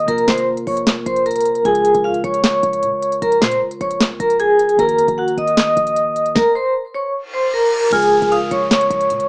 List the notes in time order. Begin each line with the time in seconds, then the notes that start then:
0.05 A#1 C3 A#3 F4 A#4 A#5, closed hi-hat
0.11 A#4
0.18 closed hi-hat
0.28 G#1 C5 C6, snare, clap, closed hi-hat
0.38 closed hi-hat
0.57 closed hi-hat
0.67 A#1 C#5 C#6, open hi-hat
0.77 closed hi-hat
0.87 snare, clap, closed hi-hat
1.06 A#1 C5 C6, closed hi-hat
1.16 closed hi-hat
1.26 A#4 A#5, closed hi-hat
1.31 closed hi-hat
1.36 C#2, closed hi-hat
1.41 closed hi-hat
1.45 closed hi-hat
1.50 A#1
1.55 closed hi-hat
1.63 A#1 C#3 G#3 F4 G#4 G#5, closed hi-hat
1.68 A#4
1.75 closed hi-hat
1.85 closed hi-hat
1.94 A#1, closed hi-hat
2.04 F4 F5
2.14 closed hi-hat
2.24 A#1 C#5 C#6, closed hi-hat
2.34 closed hi-hat
2.44 C#5 C#6, snare, clap, closed hi-hat
2.63 A#1, closed hi-hat
2.73 closed hi-hat
2.83 A#2, closed hi-hat
2.93 A#1
3.02 closed hi-hat
3.12 closed hi-hat
3.22 A#1 A#4 A#5, closed hi-hat
3.32 closed hi-hat
3.42 A#2 C5 C6, snare, clap, closed hi-hat
3.51 closed hi-hat
3.71 closed hi-hat
3.81 A#1 C#5 C#6, closed hi-hat, open hi-hat
3.91 closed hi-hat
4.00 snare, clap, closed hi-hat
4.10 C2
4.20 A#1 A#4 A#5, closed hi-hat
4.30 closed hi-hat
4.40 G#4 G#5, closed hi-hat
4.59 closed hi-hat
4.69 closed hi-hat
4.76 A#1 D#3 A#3 F#4 A#4 A#5, closed hi-hat
4.81 A#4
4.89 closed hi-hat
4.98 F2, closed hi-hat
5.08 A#1, closed hi-hat
5.18 F#4 F#5
5.28 closed hi-hat
5.37 G#1 D#5 D#6, closed hi-hat
5.47 closed hi-hat
5.57 D#5 D#6, snare, clap, closed hi-hat
5.77 A#1, closed hi-hat
5.87 closed hi-hat
5.96 closed hi-hat
6.16 closed hi-hat
6.26 closed hi-hat
6.35 A#4 A#5, kick, snare
6.55 C5 C6
6.95 C#5 C#6
7.14 reverse cymbal
7.34 C5 C6
7.54 A#4 A#5
7.90 A#1 C#3 G#3 F4 G#4 G#5 F6, closed hi-hat, crash, downlifter
7.96 A#4
8.02 closed hi-hat
8.22 A#1, closed hi-hat
8.32 F4 F5 D#6, closed hi-hat
8.51 A#1 C#5 C#6, closed hi-hat
8.71 C#5 C#6, snare, clap, closed hi-hat
8.81 closed hi-hat
8.90 A#1, closed hi-hat
9.01 closed hi-hat
9.10 A#2, closed hi-hat
9.20 A#1, closed hi-hat